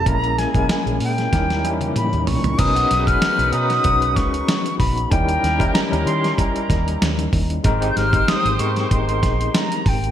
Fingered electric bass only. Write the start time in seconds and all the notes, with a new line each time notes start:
0.06 A#1
0.55 B1
0.86 A#1
1.01 A#2
1.33 D#2
1.65 E2
2.13 D#2
2.28 B1
2.44 C#2
2.59 B1
2.91 B1
3.39 B1
3.53 B2
3.84 B1
4.16 C#2
4.80 A#1
5.11 D#2
5.43 D#2
5.92 D#2
6.06 D#3
6.70 D#2
7.02 D#2
7.33 D#2
7.64 G#1
7.96 G#1
8.45 G#1
8.59 G#2
8.91 G#1
9.23 A#1
9.86 G#1